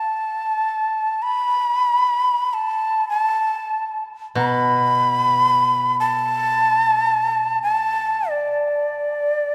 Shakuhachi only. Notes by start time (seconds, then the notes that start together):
Already playing: A5
1.22 B5
2.53 A5
3.09 A5
4.38 B5
6.00 A5
7.63 A5
8.30 D5